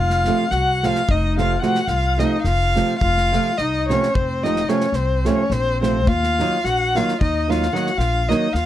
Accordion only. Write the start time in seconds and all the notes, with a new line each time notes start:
Already playing: F4
0.52 F#4
0.85 F4
1.10 D#4
1.39 F4
1.63 F#4
1.89 F4
2.22 D#4
2.47 F4
3.03 F4
3.61 D#4
3.91 C#4
4.18 C4
4.46 D#4
4.70 C#4
4.95 C4
5.26 C#4
5.52 C4
5.85 C4
6.08 F4
6.64 F#4
6.95 F4
7.21 D#4
7.50 F4
7.73 F#4
7.98 F4
8.30 D#4
8.56 F4